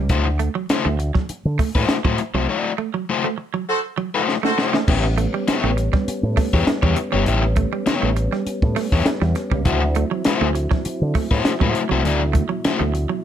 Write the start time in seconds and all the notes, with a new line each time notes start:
Already playing: C#2
0.09 D2 A3 E4 F#4 C5, kick, closed hi-hat
0.25 muted clean electric guitar stroke
0.39 A3, closed hi-hat
0.55 F#3
0.69 A3 E4 F#4 C5, muted fingered electric bass stroke, snare, closed hi-hat
0.85 D2 A3
0.99 muted clean electric guitar stroke, closed hi-hat
1.15 F#3, kick, snare
1.29 muted fingered electric bass stroke, closed hi-hat
1.45 D3
1.59 A3, kick, snare, open hi-hat
1.75 A2 A3 E4 F#4 C5, kick
1.89 muted fingered electric bass stroke, snare, closed hi-hat
2.05 A2 F#3 A3 E4 F#4 C5, kick
2.18 muted clean electric guitar stroke, closed hi-hat
2.34 C2 F#3 A3 E4 F#4 C5
2.49 A3 E4 F#4 D5
2.64 muted clean electric guitar stroke
2.78 A3
2.94 F#3
3.10 A3 E4 F#4 C5
3.24 A3
3.38 muted clean electric guitar stroke
3.54 F#3
3.68 F#4 A4 C5
3.98 F#3
4.14 A3 E4 F#4 A4 C5
4.29 snare
4.43 A3 F#4 A4 C5, snare
4.58 A3 E4 F#4 C5, muted clean electric guitar stroke, snare
4.73 A3, snare
4.88 A1 G3 B3 C#4 E4 G4 C#5, kick, crash
5.04 muted clean electric guitar stroke
5.18 A3, closed hi-hat
5.34 G3
5.48 B3 E4 G4 C#5, muted fingered electric bass stroke, snare, closed hi-hat
5.63 A1 A3
5.77 muted clean electric guitar stroke, closed hi-hat
5.93 G3, kick, snare
6.08 muted fingered electric bass stroke, closed hi-hat
6.23 A2
6.37 A3, kick, snare, open hi-hat
6.53 E2 B3 E4 G4 C#5, kick
6.67 muted fingered electric bass stroke, snare, closed hi-hat
6.83 E2 G3 B3 E4 G4 C#5, kick
6.96 muted clean electric guitar stroke, closed hi-hat
7.12 G1 G3 B3 E4 G4 C#5
7.26 A1 B3 E4 G4 E5, closed hi-hat
7.42 muted clean electric guitar stroke
7.56 A3, kick, closed hi-hat
7.73 G3
7.86 B3 E4 G4 C#5, muted fingered electric bass stroke, snare, closed hi-hat
8.02 A1 A3
8.16 muted clean electric guitar stroke, closed hi-hat
8.32 G3, snare
8.46 muted fingered electric bass stroke, closed hi-hat
8.62 A2, kick
8.76 A3, snare, open hi-hat
8.92 E2 B3 E4 G4 C#5, kick, snare
9.05 muted fingered electric bass stroke, snare, closed hi-hat
9.22 E2 G3, snare
9.35 muted clean electric guitar stroke, snare, closed hi-hat
9.52 C#2 G3, kick
9.65 D2 F#3 A3 C4 E4 F#4 C5, kick, closed hi-hat
9.82 muted clean electric guitar stroke
9.95 A3, closed hi-hat
10.11 F#3
10.25 A3 E4 F#4 C5, muted fingered electric bass stroke, snare, closed hi-hat
10.41 D2 A3
10.55 muted clean electric guitar stroke, closed hi-hat
10.71 F#3, kick, snare
10.85 muted fingered electric bass stroke, closed hi-hat
11.01 D3
11.15 A3, kick, snare, open hi-hat
11.31 A2 A3 E4 F#4 C5, kick
11.45 muted fingered electric bass stroke, snare, closed hi-hat
11.60 A2 F#3 A3 E4 F#4 C5, kick
11.74 muted clean electric guitar stroke, closed hi-hat
11.89 C2 F#3 A3 E4 F#4 C5
12.05 D2 B2 A3 E4 F#4 D5, closed hi-hat
12.20 muted clean electric guitar stroke
12.33 A3, kick, closed hi-hat
12.49 F#3
12.64 A3 E4 F#4 C5, muted fingered electric bass stroke, snare, closed hi-hat
12.79 D2 A3
12.94 muted clean electric guitar stroke, closed hi-hat
13.09 F#3